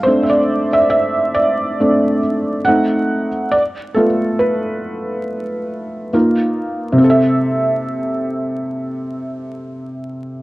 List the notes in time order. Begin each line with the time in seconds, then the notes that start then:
0.03 A3 C4 C5
0.08 D4
0.23 E5
0.30 D5
0.73 E5
0.90 E5
1.34 D5
1.80 A3 C4 D4
2.65 A3 C4 D#4 F#5
3.52 D5
3.94 A3 B3 F4 A4
4.39 B4
6.13 A#3 D#4 F4
6.92 C3
6.98 C4
7.04 A4
7.10 E5